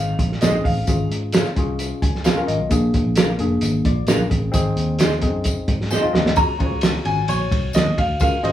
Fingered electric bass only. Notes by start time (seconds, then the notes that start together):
Already playing: G#1
0.19 A#1
0.41 A#1
0.65 A1
0.88 G#1
1.10 G#2
1.57 C2
2.02 C#2
2.48 G#1
2.60 B1
2.71 A#1
3.05 A#1
3.39 F1
3.62 G#1
3.85 A#1
4.08 A#1
4.31 A1
4.54 G#1
4.76 D#2
5.22 F#2
5.68 G#2
6.14 D#2
6.25 D2
6.37 C#2
6.71 C#2
7.05 G#1
7.28 A#1
7.51 C2
7.74 D#2
7.98 D2
8.21 C#2
8.44 G#1